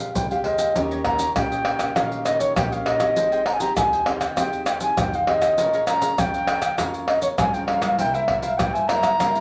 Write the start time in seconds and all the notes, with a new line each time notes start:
Already playing: A#1 F3 G#3 C4 G4 F5
0.15 C2 C3 G5, pandeiro, maracas, surdo
0.31 G#3 C4 G4 C5 F5 G5, pandeiro, maracas
0.44 D#2 G#4 C5 D#5 F5 G5, pandeiro
0.58 C5 F5 G5, pandeiro, maracas
0.75 D#2 D#3 A#3 C#4 D#4 G4 C#5 D#5, pandeiro, maracas, surdo
0.91 D#4 G4 C#5 D#5, pandeiro, maracas
1.04 A#3 C#4 D#4 G4 C#5 D#5 A#5, pandeiro, tamborim, surdo
1.19 D#4 G4 C#5 D#5, pandeiro, maracas
1.35 A#1 A#2 A#3 C#4 G4 G5, pandeiro, tamborim, maracas, surdo
1.52 G4 C#5 D#5, pandeiro, maracas
1.65 D#4 G4 C#5 D#5, pandeiro, tamborim
1.79 A#3 C#4 G4 C#5 D#5, pandeiro, tamborim, maracas
1.95 A#1 D#3 A#3 C#4 D#4 G4 C#5 D#5 F5, pandeiro, tamborim, maracas, surdo
2.12 pandeiro, maracas
2.25 D#4 G4 C#5 D#5, pandeiro, tamborim, maracas
2.39 C#5, pandeiro, maracas
2.56 A#1 A#2 A#3 C#4 G4 G5, pandeiro, tamborim, maracas, surdo
2.71 G4 C#5 D#5 F5, pandeiro, maracas
2.85 D#4 G4 C#5 D#5, pandeiro, tamborim
2.99 C4 D#4 G4 C#5 D#5, pandeiro, tamborim, maracas
3.16 G#1 G#3 G#4 C5 D#5 G5, pandeiro, maracas, surdo
3.31 G#4 C5 D#5 G5, pandeiro, maracas
3.46 C5 D#5 G5 A#5, pandeiro, tamborim
3.53 G#5
3.60 C4 D#4 G4 G#4 C5 D#5 G5 A#5, pandeiro, maracas
3.76 D#2 D#3 G#5, pandeiro, tamborim, maracas, surdo
3.93 C5 D#5 G5, pandeiro, maracas
4.06 C4 D#4 G4 G#4 C5 D#5 G5, pandeiro, tamborim
4.21 C5 D#5 G5, pandeiro, tamborim, maracas
4.37 D#2 G#3 C4 D#4 G4 G#4 C5 D#5 G5, pandeiro, tamborim, maracas, surdo
4.53 pandeiro, maracas
4.66 G#4 C5 D#5 G5, pandeiro, tamborim, maracas
4.80 C4 D#4 G4 G#5, pandeiro, maracas
4.97 F2 D#3 G5, pandeiro, tamborim, maracas, surdo
5.13 C5 D#5 F5 G5, pandeiro, maracas
5.27 C4 D#4 G4 G#4 C5 D#5 G5, pandeiro, tamborim
5.41 C5 D#5 G5, pandeiro, tamborim, maracas
5.58 A#1 A#2 G#3 C#4 F4 G#4 C#5 F5 A#5, pandeiro, maracas, surdo
5.74 G#4 C#5 F5 A#5, pandeiro, maracas
5.87 G#3 C#4 F4 G#4 C#5 F5 A#5, pandeiro, tamborim, maracas
6.02 G#4 C#5 F5 A#5, pandeiro, maracas
6.18 F2 F3 G#3 C#4 F4 G5, pandeiro, tamborim, maracas, surdo
6.34 C#5 F5 A#5, pandeiro, maracas
6.47 G#4 C#5 F5 A#5, pandeiro, tamborim, maracas
6.62 F5 A#5, pandeiro, tamborim, maracas
6.78 F2 A#2 G#3 C#4 F4 G#4 C#5 F5 A#5, pandeiro, tamborim, maracas, surdo
6.94 pandeiro, maracas
7.07 G#4 C#5 D#5 F5 A#5, pandeiro, tamborim
7.22 C#5, pandeiro, maracas
7.38 G2 F3 G#3 C#4 F4 G#5, pandeiro, tamborim, maracas, surdo
7.53 G#3 C#4 F4 C#5 F5 G5 A#5, pandeiro, maracas
7.67 G#4 C#5 F5 A#5, pandeiro, tamborim
7.82 G3 A#3 E4 C#5 F5 A#5, pandeiro, tamborim, maracas
7.98 C2 C3 E4 A#4 C5 E5 G5, pandeiro, maracas, surdo
8.14 E4 A#4 C5 E5, pandeiro, maracas
8.28 G3 A#3 E4 A#4 C5 E5, pandeiro, tamborim, surdo
8.41 E4 A#4 C5 E5 F5, pandeiro, maracas
8.58 G2 G3 A#3 E4 G5, pandeiro, tamborim, maracas, surdo
8.73 A#4 C5 E5 G#5, pandeiro, maracas
8.88 G3 A#3 E4 A#4 C5 E5 A#5, pandeiro, tamborim, maracas
9.02 G3 A#3 E4 A#4 C5 E5, pandeiro, tamborim, maracas
9.19 G2 C3 G3 A#3 E4 A#4 C5 E5, pandeiro, tamborim, maracas, surdo
9.35 pandeiro, maracas